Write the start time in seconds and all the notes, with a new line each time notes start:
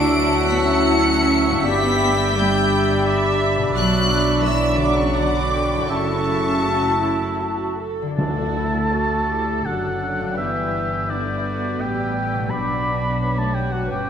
Already playing: D2 D3 F#3 D4 E4 F#4 E5 F#5 A5 D6 D7
0.48 B3 B6
0.65 C#4 C#7
1.51 G2
1.55 D4
1.59 G4
1.64 G1 B3 G4 D5
1.68 G3 D4 D5 G5 B5 B6
2.35 G3 G4 D5 B5 G6
3.07 E5
3.57 B2
3.62 D4
3.70 B1 F#3 F#4 B4 D5
3.75 F#3 D5 B5 F#6
4.43 E3 D5 E5 E6
4.79 D3 D6
4.97 C#3 C#6
5.14 D3 F#4 D5 F#5 B5 D6
5.52 G5
5.73 F#2
5.77 E4
5.82 F#5
5.86 F#1 A4 E5 A5
5.90 C#3 A3 E4 F#4 A4 C#6
6.65 F#4
7.03 E4
7.41 F#4
7.80 A4
8.02 D3
8.07 E4
8.11 D4
8.16 D2 D3 D4 A4 A5 E6
8.20 A3 F#4
8.56 E4
8.92 F#4 A4 D5
9.29 E4 G4
9.63 F#1 F#2 F#3 D4 A4 D5 F#5 F#6
10.01 D4
10.21 G2 D4
10.29 G3
10.34 G1 G2 G4 B4 E5
10.39 E3 B3 G6
11.06 E4 B4 D5 E5
11.10 D3
11.45 F#4
11.81 A1 A2 G3 G4 D5 G5 E6
12.19 G4
12.35 B2
12.39 D4
12.44 F#3
12.49 B1 B2 B3 F#4 B4 D5 B5
12.53 D4 D5 D6
13.20 B4 C#5
13.38 A3 A5
13.52 G3 G5
13.71 F#3 F#5
13.88 G1 G2 F#3 C#4 B4 G5 D6